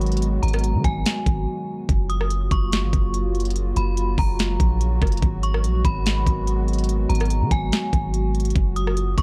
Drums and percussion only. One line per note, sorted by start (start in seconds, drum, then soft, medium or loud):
0.01 closed hi-hat soft
0.06 closed hi-hat medium
0.12 closed hi-hat medium
0.17 closed hi-hat medium
0.22 closed hi-hat medium
0.43 closed hi-hat medium
0.48 closed hi-hat medium
0.53 cross-stick medium
0.53 closed hi-hat medium
0.59 closed hi-hat soft
0.64 closed hi-hat medium
0.84 kick loud
0.84 closed hi-hat medium
1.06 snare loud
1.06 closed hi-hat medium
1.26 kick loud
1.26 closed hi-hat medium
1.89 kick loud
1.89 closed hi-hat medium
2.10 closed hi-hat medium
2.21 cross-stick medium
2.30 closed hi-hat medium
2.51 kick medium
2.51 closed hi-hat medium
2.72 snare loud
2.72 closed hi-hat medium
2.93 kick loud
2.93 closed hi-hat medium
3.14 closed hi-hat medium
3.35 closed hi-hat soft
3.40 closed hi-hat medium
3.45 closed hi-hat medium
3.50 closed hi-hat medium
3.56 closed hi-hat medium
3.76 closed hi-hat medium
3.97 closed hi-hat medium
4.18 kick medium
4.18 open hi-hat medium
4.39 snare loud
4.39 closed hi-hat medium
4.60 kick loud
4.60 closed hi-hat medium
4.81 closed hi-hat medium
5.02 kick loud
5.02 cross-stick loud
5.02 closed hi-hat soft
5.07 closed hi-hat medium
5.12 closed hi-hat medium
5.17 closed hi-hat medium
5.22 kick loud
5.22 closed hi-hat medium
5.43 closed hi-hat medium
5.54 cross-stick medium
5.64 closed hi-hat medium
5.85 kick loud
5.85 closed hi-hat medium
6.06 snare loud
6.06 closed hi-hat medium
6.27 kick loud
6.27 closed hi-hat medium
6.47 closed hi-hat medium
6.68 closed hi-hat soft
6.73 closed hi-hat medium
6.79 closed hi-hat medium
6.84 closed hi-hat medium
6.89 closed hi-hat medium
7.10 closed hi-hat medium
7.15 closed hi-hat medium
7.20 cross-stick medium
7.20 closed hi-hat soft
7.25 closed hi-hat soft
7.30 closed hi-hat medium
7.51 kick medium
7.51 closed hi-hat medium
7.72 snare loud
7.72 closed hi-hat medium
7.93 kick loud
7.93 closed hi-hat medium
8.14 closed hi-hat medium
8.35 closed hi-hat medium
8.40 closed hi-hat medium
8.45 closed hi-hat medium
8.50 closed hi-hat medium
8.56 kick loud
8.56 closed hi-hat medium
8.76 closed hi-hat medium
8.87 cross-stick medium
8.97 closed hi-hat medium
9.18 kick medium
9.18 closed hi-hat medium